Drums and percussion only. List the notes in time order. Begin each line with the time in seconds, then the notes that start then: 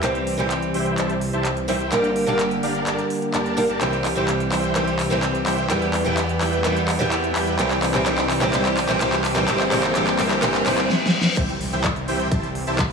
0.03 clap, closed hi-hat
0.15 closed hi-hat
0.27 open hi-hat
0.39 closed hi-hat
0.51 clap, closed hi-hat
0.62 closed hi-hat
0.74 open hi-hat
0.86 closed hi-hat
0.98 clap, closed hi-hat
1.10 closed hi-hat
1.21 open hi-hat
1.33 closed hi-hat
1.45 clap, closed hi-hat
1.57 closed hi-hat
1.69 open hi-hat
1.80 closed hi-hat
1.92 clap, closed hi-hat
2.04 closed hi-hat
2.16 open hi-hat
2.28 closed hi-hat
2.39 clap, closed hi-hat
2.51 closed hi-hat
2.63 open hi-hat
2.75 closed hi-hat
2.87 clap, closed hi-hat
2.99 closed hi-hat
3.10 open hi-hat
3.22 closed hi-hat
3.34 clap, closed hi-hat
3.46 closed hi-hat
3.58 open hi-hat
3.69 closed hi-hat
3.81 clap, closed hi-hat
3.93 closed hi-hat
4.05 clap, open hi-hat
4.17 closed hi-hat
4.28 clap, closed hi-hat
4.40 closed hi-hat
4.52 clap, open hi-hat
4.64 closed hi-hat
4.76 clap, closed hi-hat
4.88 closed hi-hat
4.99 clap, open hi-hat
5.11 closed hi-hat
5.23 clap, closed hi-hat
5.35 closed hi-hat
5.46 clap, open hi-hat
5.58 closed hi-hat
5.70 clap, closed hi-hat
5.82 closed hi-hat
5.94 clap, open hi-hat
6.06 closed hi-hat
6.17 clap, closed hi-hat
6.29 closed hi-hat
6.41 clap, open hi-hat
6.53 closed hi-hat
6.65 clap, closed hi-hat
6.77 closed hi-hat
6.88 clap, open hi-hat
7.00 closed hi-hat
7.12 clap, closed hi-hat
7.24 closed hi-hat
7.36 clap, open hi-hat
7.47 closed hi-hat
7.59 clap, closed hi-hat
7.71 clap, closed hi-hat
7.83 clap, open hi-hat
7.95 clap, closed hi-hat
8.06 clap, closed hi-hat
8.18 clap, closed hi-hat
8.30 clap, open hi-hat
8.42 clap, closed hi-hat
8.54 clap, closed hi-hat
8.65 clap, closed hi-hat
8.77 clap, open hi-hat
8.89 clap
9.01 clap, closed hi-hat
9.13 clap, closed hi-hat
9.24 clap, open hi-hat
9.36 clap, closed hi-hat
9.48 clap, closed hi-hat
9.60 clap, closed hi-hat
9.72 clap, open hi-hat
9.84 clap
9.95 clap, closed hi-hat
10.07 clap, closed hi-hat
10.19 clap, open hi-hat
10.31 clap, closed hi-hat
10.43 clap, closed hi-hat
10.54 clap, closed hi-hat
10.66 clap, open hi-hat
10.78 clap, closed hi-hat
10.90 snare
11.06 snare
11.21 snare
11.37 kick, closed hi-hat, crash
11.49 closed hi-hat
11.61 open hi-hat
11.73 closed hi-hat
11.84 kick, clap, closed hi-hat
11.96 closed hi-hat
12.08 open hi-hat
12.20 closed hi-hat
12.31 kick, closed hi-hat
12.43 closed hi-hat
12.55 open hi-hat
12.67 closed hi-hat
12.79 kick, clap, closed hi-hat